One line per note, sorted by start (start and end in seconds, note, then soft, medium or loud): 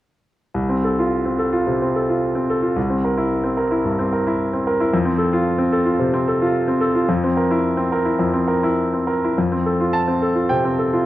0.54 1.62 C2 soft
0.69 0.91 C4 soft
0.84 1.06 A4 soft
0.99 1.42 F4 soft
1.25 1.47 C4 soft
1.38 1.60 A4 soft
1.52 1.74 F4 soft
1.67 1.88 C3 soft
1.82 2.03 C4 soft
1.96 2.16 A4 soft
2.09 2.52 F4 soft
2.35 2.57 C4 soft
2.49 2.71 A4 soft
2.62 2.76 F4 soft
2.76 3.81 C2 soft
2.90 3.12 C4 soft
3.05 3.26 A#4 soft
3.18 3.61 E4 soft
3.44 3.65 C4 soft
3.57 3.79 A#4 soft
3.71 3.93 E4 soft
3.85 4.06 G2 soft
3.99 4.20 C4 soft
4.13 4.34 A#4 soft
4.27 4.70 E4 soft
4.53 4.75 C4 soft
4.67 4.88 A#4 soft
4.81 4.94 E4 soft
4.94 5.97 F2 medium
5.06 5.27 C4 soft
5.18 5.40 A4 soft
5.33 5.76 F4 soft
5.58 5.80 C4 soft
5.72 5.94 A4 soft
5.86 6.07 F4 soft
5.99 6.21 C3 soft
6.14 6.35 C4 soft
6.28 6.49 A4 soft
6.42 6.84 F4 soft
6.68 6.89 C4 soft
6.81 7.02 A4 soft
6.95 7.08 F4 soft
7.09 8.16 F2 medium
7.24 7.45 C4 soft
7.37 7.58 A#4 soft
7.51 7.94 E4 soft
7.77 7.99 C4 soft
7.92 8.14 A#4 soft
8.05 8.28 E4 soft
8.19 9.34 F2 soft
8.34 8.56 C4 soft
8.48 8.71 A#4 soft
8.63 9.11 E4 soft
8.93 9.17 C4 soft
9.07 9.31 A#4 soft
9.24 9.38 E4 soft
9.38 10.47 F2 soft
9.52 9.75 C4 soft
9.66 9.89 A4 soft
9.81 10.25 F4 soft
9.93 10.50 A5 medium
10.08 10.30 C4 soft
10.22 10.44 A4 soft
10.35 10.58 F4 soft
10.49 10.73 C3 soft
10.49 11.06 G5 medium
10.65 10.87 C4 soft
10.79 11.01 A4 soft
10.93 11.06 F4 soft